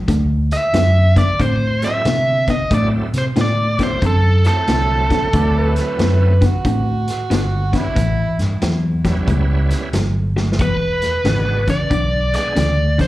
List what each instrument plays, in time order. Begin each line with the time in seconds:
0.08 fingered electric bass D2, clean electric guitar D3 A3, kick, snare, closed hi-hat
0.51 lead electric guitar E5, snare, closed hi-hat
0.73 fingered electric bass F#2, clean electric guitar D3 B3, snare, closed hi-hat
1.16 clean electric guitar D3 B3, lead electric guitar D5, kick, snare, closed hi-hat
1.40 fingered electric bass A2, clean electric guitar D3 C4, lead electric guitar C5, kick, closed hi-hat
1.82 tonewheel organ F#3 A3 C4 E4, lead electric guitar E5, snare, closed hi-hat
2.05 fingered electric bass C3, clean electric guitar D3 B3, snare, closed hi-hat
2.48 clean electric guitar D3 B3, lead electric guitar D#5, kick, snare, closed hi-hat
2.70 fingered electric bass A2, clean electric guitar D3 A3, tonewheel organ F#3 A3 C4 E4, kick, closed hi-hat
2.75 lead electric guitar D5
3.13 fingered electric bass C3, snare, closed hi-hat
3.18 lead electric guitar C5
3.36 fingered electric bass A2, clean electric guitar D3 B3, snare, closed hi-hat
3.41 lead electric guitar D5
3.78 clean electric guitar D3 B3, tonewheel organ F#3 A3 C4 E4, kick, snare, closed hi-hat
3.83 lead electric guitar C5
4.02 fingered electric bass F#2, clean electric guitar D3 C4, kick, closed hi-hat
4.06 lead electric guitar A4
4.44 tonewheel organ F#3 A3 C4 E4, lead electric guitar A4, snare, closed hi-hat
4.68 fingered electric bass C2, clean electric guitar D3 B3, snare, closed hi-hat
5.10 clean electric guitar D3 B3, kick, snare, closed hi-hat
5.33 fingered electric bass D2, clean electric guitar D3 A3, tonewheel organ F#3 A3 C4 E4, harmonica F#4 B4 D5, kick, closed hi-hat
5.57 harmonica B4
5.76 snare, closed hi-hat
5.99 fingered electric bass F#2, clean electric guitar D3 B3, snare, closed hi-hat
6.41 clean electric guitar D3 B3, harmonica F#4, kick, snare, closed hi-hat
6.65 fingered electric bass A2, clean electric guitar D3 C4, harmonica F#4, kick, closed hi-hat
7.08 snare, closed hi-hat
7.30 fingered electric bass G1, clean electric guitar D3 B3, harmonica B3 D4 F#4, snare, closed hi-hat
7.73 clean electric guitar D3 B3, tonewheel organ G3 B3 C#4 E4, harmonica E4, kick, snare, closed hi-hat
7.95 fingered electric bass A1, clean electric guitar A2 E3, kick, snare, closed hi-hat
8.39 fingered electric bass G2, snare, closed hi-hat
8.62 fingered electric bass E2, clean electric guitar A2 F#3, snare, closed hi-hat
9.05 clean electric guitar A2 F#3, tonewheel organ G3 B3 C#4 E4, kick, snare, closed hi-hat
9.28 fingered electric bass C#2, clean electric guitar A2 G3, kick, closed hi-hat
9.71 snare, closed hi-hat
9.93 fingered electric bass G1, clean electric guitar A2 F#3, snare, closed hi-hat
10.36 clean electric guitar A2 F#3, snare
10.52 snare
10.59 fingered electric bass E1, clean electric guitar E2 B2, lead electric guitar B4, kick, closed hi-hat
11.02 snare, closed hi-hat
11.24 fingered electric bass G#1, clean electric guitar E2 C#3, tonewheel organ G#3 B3 D4 F#4, snare, closed hi-hat
11.68 clean electric guitar E2 C#3, lead electric guitar D5, kick, snare, closed hi-hat
11.90 fingered electric bass B1, clean electric guitar E2 D3, kick, closed hi-hat
12.33 tonewheel organ G#3 B3 D4 G#4, lead electric guitar D5, snare, closed hi-hat
12.56 fingered electric bass D2, clean electric guitar E2 C#3, snare, closed hi-hat
12.98 clean electric guitar E2 C#3, lead electric guitar C5, kick, snare, closed hi-hat